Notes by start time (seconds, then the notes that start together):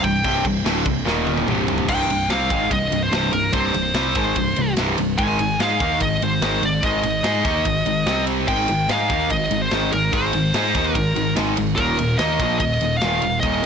0.03 C1 C2 G2 G5, kick, crash
0.24 C1 C2 G2 C3, kick, crash
0.45 C1 C2 G2, kick, crash
0.65 D1 D2 A2 D3, snare, crash
0.84 C1 C2 G2, kick, crash
1.05 D#1 D#2 A#2 D#3, snare
1.27 high tom
1.38 high tom
1.47 C1 C2 G2 C3, mid tom
1.68 floor tom
1.78 floor tom
1.88 C1 C2 G2 C3 G5, kick, crash
2.08 C1 C2 G2, ride
2.28 C2 C3 G3 C4 F5, snare, ride
2.50 G#1 G#2 D#3 G#3, kick, ride
2.71 C1 C2 G2 D#5, kick, ride
2.91 C1 C2 G2, ride
3.03 C5
3.11 C1 C2 G2 C3, snare, ride
3.32 C1 C2 G2 A#4, ride
3.53 C1 C2 G2 C3 C5, kick, ride
3.74 C1 C2 G2, ride
3.94 C2 C3 G3 C4, snare, ride
4.15 G#1 G#2 D#3 G#3, kick, ride
4.35 C1 C2 G2, kick, ride
4.56 C1 C2 G2, ride
4.77 C1 C2 G2 C3, snare, ride
4.98 C1 C2 G2, ride
5.18 G#1 G#2 D#3 G#3 G#5, kick, ride
5.39 G#1 G#2 D#3, ride
5.59 G#2 G#3 D#4 G#4 F5, snare, ride
5.80 D#2 D#3 A#3 D#4, kick, ride
6.00 G#1 G#2 D#3 D#5, kick, ride
6.21 G#1 G#2 D#3 C5, ride
6.41 G#1 G#2 D#3 G#3, snare, ride
6.62 G#1 G#2 D#3 D5, ride
6.83 G#1 G#2 D#3 G#3 D#5, kick, ride
7.03 G#1 G#2 D#3, ride
7.23 G#2 G#3 D#4 G#4, snare, ride
7.45 D#2 D#3 A#3 D#4, kick, ride
7.65 G#1 G#2 D#3, kick, ride
7.86 G#1 G#2 D#3, ride
8.06 C2 C3 G3 C4, snare, ride
8.27 ride
8.48 G#1 G#2 D#3 G#3 G5, kick, crash
8.68 G#1 G#2 D#3, ride
8.89 G#2 G#3 D#4 G#4 F5, snare, ride
9.10 D#2 D#3 A#3 D#4, kick, ride
9.30 G#1 G#2 D#3 D#5, kick, ride
9.51 G#1 G#2 D#3, ride
9.62 C5
9.71 G#1 G#2 D#3 G#3, snare, ride
9.92 G#1 G#2 D#3 A#4, ride
10.12 G#1 G#2 D#3 G#3 C5, kick, ride
10.33 G#1 G#2 D#3, ride
10.54 G#2 G#3 D#4 G#4, snare, ride
10.75 D#2 D#3 A#3 D#4, kick, ride
10.95 G#1 G#2 D#3 A#4, kick, ride
11.16 G#1 G#2 D#3, ride
11.36 G#1 G#2 D#3 G#3, snare, ride
11.57 G#1 G#2 D#3, ride
11.76 D#1 D#2 A#2 D#3 A#4, kick, ride
11.99 D#1 D#2 A#2, ride
12.18 D#2 D#3 A#3 D#4 D#5, snare, ride
12.39 A#1 A#2 F3 A#3, kick, ride
12.59 D#1 D#2 A#2 D#5, kick, ride
12.81 D#1 D#2 A#2, ride
12.97 F5, ride
13.02 D#1 D#2 A#2 D#3, snare
13.22 D#1 D#2 A#2, ride
13.40 D#1 D#2 A#2 D#3 D#5, kick, ride
13.63 D#1